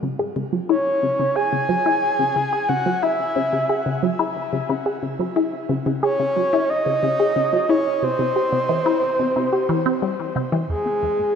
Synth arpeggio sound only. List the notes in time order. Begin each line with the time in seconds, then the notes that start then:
0.03 C#3
0.19 G#4
0.36 C#3
0.53 F#3
0.69 E4
1.03 C#3
1.20 C#3
1.36 G#4
1.53 C#3
1.69 F#3
1.86 E4
2.19 C#3
2.36 C#3
2.53 G#4
2.69 C#3
2.86 F#3
3.03 E4
3.36 C#3
3.53 C#3
3.69 G#4
3.86 C#3
4.03 F#3
4.19 E4
4.53 C#3
4.69 C#3
4.86 G#4
5.03 C#3
5.19 F#3
5.36 E4
5.69 C#3
5.86 C#3
6.03 G#4
6.20 C#3
6.36 F#3
6.53 E4
6.86 C#3
7.03 C#3
7.20 G#4
7.36 C#3
7.53 F#3
7.69 E4
8.03 C3
8.19 C3
8.36 G4
8.52 C3
8.69 E3
8.86 E4
9.19 C3
9.36 C3
9.53 G4
9.69 E3
9.86 C4
10.02 G3
10.36 C3
10.52 E3
10.69 F2
10.86 C4
11.03 F2
11.19 A#2